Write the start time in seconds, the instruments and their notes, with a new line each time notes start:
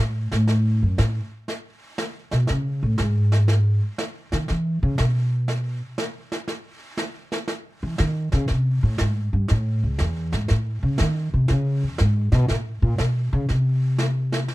0.00 upright bass A2
0.32 upright bass A2, snare
0.48 brush sweep, snare
0.83 upright bass F#2
0.98 upright bass A2, snare
1.48 brush sweep, snare
1.98 snare
2.31 upright bass B2, snare
2.47 upright bass C#3, brush sweep, snare
2.83 upright bass A2
2.98 upright bass G#2, snare
3.32 snare
3.48 brush sweep, snare
3.98 snare
4.32 upright bass D#3, snare
4.48 upright bass E3, brush sweep, snare
4.83 upright bass C#3
4.98 upright bass B2, snare
5.48 brush sweep, snare
5.98 snare
6.32 snare
6.48 brush sweep, snare
6.97 snare
7.32 snare
7.48 brush sweep, snare
7.83 upright bass E3
7.98 upright bass D#3, snare
8.32 upright bass C#3, snare
8.48 upright bass C3, brush sweep, snare
8.83 upright bass A2
8.98 upright bass G#2, snare
9.33 upright bass G2
9.48 upright bass A2, brush sweep, snare
9.83 upright bass C#2
9.99 upright bass E2, snare
10.32 upright bass G#2, snare
10.48 upright bass A2, brush sweep, snare
10.83 upright bass C#3
10.98 upright bass D#3, snare
11.34 upright bass C3
11.48 upright bass C#3, brush sweep, snare
11.83 upright bass E2
11.98 upright bass G#2, snare
12.32 upright bass B2, snare
12.48 upright bass A2, brush sweep, snare
12.82 upright bass A#2
12.98 upright bass B2, snare
13.33 upright bass C#3
13.49 upright bass C3, brush sweep, snare
13.98 snare
14.32 snare
14.48 brush sweep, snare